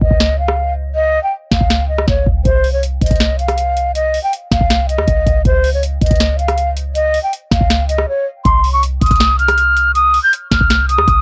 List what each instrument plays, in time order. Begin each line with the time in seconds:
0.01 808-style bass C#2, flute D#5, kick
0.11 808-style bass C#2, kick
0.20 snare
0.39 flute F5
0.48 cross-stick
0.95 flute D#5
1.23 flute G5
1.51 808-style bass C#2, flute F5, kick, snare
1.61 808-style bass C#2, kick
1.70 snare
1.89 flute D#5
1.98 cross-stick
2.08 808-style bass C#2, flute C#5, kick, snare
2.26 808-style bass C#2, kick
2.45 808-style bass C2, flute C5, kick, closed hi-hat
2.64 open hi-hat
2.73 flute C#5
2.83 closed hi-hat
3.01 808-style bass C2, flute D#5, kick, closed hi-hat
3.06 closed hi-hat
3.11 808-style bass C2, kick, closed hi-hat
3.16 closed hi-hat
3.20 snare, closed hi-hat
3.39 flute F5, closed hi-hat
3.48 cross-stick, closed hi-hat
3.58 closed hi-hat
3.77 closed hi-hat
3.95 flute D#5, closed hi-hat
4.14 open hi-hat
4.23 flute G5
4.33 closed hi-hat
4.51 808-style bass C2, flute F5, kick, snare, closed hi-hat
4.61 808-style bass C2, kick
4.70 snare, closed hi-hat
4.89 flute D#5, closed hi-hat
4.98 808-style bass D#2, cross-stick
5.08 808-style bass C2, kick, closed hi-hat
5.26 808-style bass C2, kick, closed hi-hat
5.45 808-style bass C#2, flute C5, kick, closed hi-hat
5.64 open hi-hat
5.74 flute C#5
5.83 closed hi-hat
6.01 808-style bass C#2, flute D#5, kick, closed hi-hat
6.06 closed hi-hat
6.11 808-style bass C#2, kick, closed hi-hat
6.16 closed hi-hat
6.20 snare, closed hi-hat
6.39 flute F5, closed hi-hat
6.48 cross-stick, closed hi-hat
6.58 closed hi-hat
6.77 closed hi-hat
6.95 flute D#5, closed hi-hat
7.14 open hi-hat
7.23 flute G5
7.33 closed hi-hat
7.51 808-style bass C#2, flute F5, kick, snare, closed hi-hat
7.61 808-style bass C#2, kick
7.70 snare, closed hi-hat
7.89 flute D#5, closed hi-hat
7.98 cross-stick
8.08 flute C#5
8.45 808-style bass C2, flute C6, kick, closed hi-hat
8.64 open hi-hat
8.73 flute C#6
8.83 closed hi-hat
9.01 808-style bass C2, flute D#6, kick, closed hi-hat
9.06 closed hi-hat
9.11 808-style bass C2, kick, closed hi-hat
9.16 closed hi-hat
9.20 snare, closed hi-hat
9.39 flute F6, closed hi-hat
9.48 cross-stick, closed hi-hat
9.58 closed hi-hat
9.77 closed hi-hat
9.95 flute D#6, closed hi-hat
10.14 open hi-hat
10.23 flute G6
10.33 closed hi-hat
10.51 808-style bass C2, flute F6, kick, snare, closed hi-hat
10.61 808-style bass C2, kick
10.70 snare, closed hi-hat
10.89 flute D#6, closed hi-hat
10.98 808-style bass D#2, cross-stick
11.08 808-style bass C2, kick, closed hi-hat